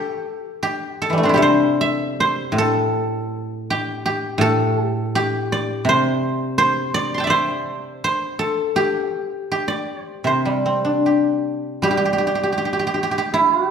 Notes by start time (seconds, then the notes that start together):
Already playing: C3 C4 G4 A4
0.63 G4
1.02 A4
1.10 E3 G3
1.18 A3
1.23 C4 D4
1.29 E4
1.34 C3 G4 A4
1.42 C5
1.81 E5
2.20 C5
2.52 A2
2.58 A4
3.70 G4
4.06 G4
4.38 A2 A4
4.86 G4
5.15 G4
5.52 D5
5.85 C3
5.89 C5
6.58 C5
6.94 D5
7.14 A5 C6
7.20 E5 G5
7.27 C5 D5
8.04 C5
8.39 A4
8.76 G4
9.52 G4
9.68 D5
10.02 C5
10.24 C3 C5
10.45 G3
10.66 C4
10.85 D4
11.06 G4
11.82 G3 G4
11.91 G4
11.97 G4
12.05 G4
12.13 G4
12.18 G4
12.27 G4
12.35 G4
12.43 G4
12.52 G4
12.58 G4
12.65 G4
12.73 G4
12.79 G4
12.87 G4
12.94 G4
13.03 G4
13.11 G4
13.18 G4
13.34 E4
13.68 G4